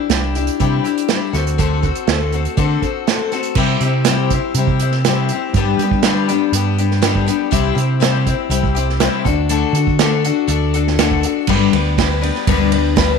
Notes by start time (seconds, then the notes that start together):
Already playing: D4 E4 G4
0.10 C2 G3 D4 E4 G4, snare, closed hi-hat
0.35 D4 E4 G4, closed hi-hat
0.47 closed hi-hat
0.60 C3 G3 D4 E4 G4, kick, closed hi-hat
0.84 D4 E4 G4, closed hi-hat
0.98 closed hi-hat
1.08 G3 D4 E4 G4, snare, closed hi-hat
1.33 D2 C4 F#4 A4, snare, closed hi-hat
1.47 closed hi-hat
1.58 D3 A3 C4 F#4 A4, kick, closed hi-hat
1.82 C4 F#4 A4, kick, closed hi-hat
1.95 closed hi-hat
2.07 D2 A3 C4 F#4 A4, snare, closed hi-hat
2.32 C4 F#4 A4, closed hi-hat
2.45 closed hi-hat
2.57 D3 A3 C4 F#4 A4, kick, closed hi-hat
2.82 C4 F#4 A4, kick, closed hi-hat
3.07 A3 C4 F#4 A4, snare, closed hi-hat
3.32 C4 F#4 A4, snare, closed hi-hat
3.43 closed hi-hat
3.55 C3 G3 C4 E4 G4, kick, crash
3.80 C3 G4, closed hi-hat
3.85 C4 E4
4.05 C3 G3 C4 E4 G4, snare, closed hi-hat
4.30 C4 E4 G4, kick, closed hi-hat
4.54 C3 G3 C4 E4, closed hi-hat
4.59 G4
4.67 kick
4.79 C4 E4 G4, closed hi-hat
4.92 snare
5.05 C3 G3 C4 E4 G4, snare, closed hi-hat
5.29 G4, closed hi-hat
5.33 C4 E4
5.54 G2 D3 G3 B3 D4 G4, kick, closed hi-hat
5.79 G3 G4, closed hi-hat
5.83 G3 B3 D4
5.91 kick
6.03 G2 D3 G3 B3 D4 G4, snare, closed hi-hat
6.28 G3 B3 D4 G4, closed hi-hat
6.52 G2 G3 B3 D4 G4, closed hi-hat
6.78 G3 B3 D4 G4, closed hi-hat
6.91 snare
7.02 G2 D3 G3 B3 D4 G4, snare, closed hi-hat
7.15 kick
7.26 G3 B3 D4 G4, closed hi-hat
7.51 C2 C3 G3 C4 E4 G4, kick, closed hi-hat
7.75 C3 C4 E4 G4, closed hi-hat
8.00 C3 G3 C4 E4 G4, snare, closed hi-hat
8.27 C4 E4 G4, kick, closed hi-hat
8.49 C2 G3 C4 E4 G4, closed hi-hat
8.64 kick
8.75 C4 E4 G4, closed hi-hat
8.90 snare
9.00 C3 G3 C4 E4 G4, snare, closed hi-hat
9.25 D2 D4 F#4 A4, kick, closed hi-hat
9.49 D3 A3 D4 F#4 A4, closed hi-hat
9.73 D3 F#4 A4, closed hi-hat
9.77 D4
9.87 kick
9.99 D3 A3 D4 F#4 A4, snare, closed hi-hat
10.24 D4 F#4 A4, closed hi-hat
10.47 D2 A3 D4 F#4 A4, closed hi-hat
10.74 D4 F#4 A4, closed hi-hat
10.87 snare
10.99 D3 A3 D4 F#4 A4, snare, closed hi-hat
11.11 kick
11.23 D4 F#4 A4, closed hi-hat
11.47 G1 G2 D3 G3 B3 D4 B4, kick, crash
11.72 D2 G3 B3 D4 B4, ride
11.97 G3 B3 D4 B4, kick, snare, ride
12.21 G3 B3 D4 B4, ride
12.35 snare
12.47 D2 G2 D3 G3 B3 D4 B4, kick, ride
12.72 G3 B3 D4 B4, ride
12.96 G3 B3 D4 B4, kick, snare, ride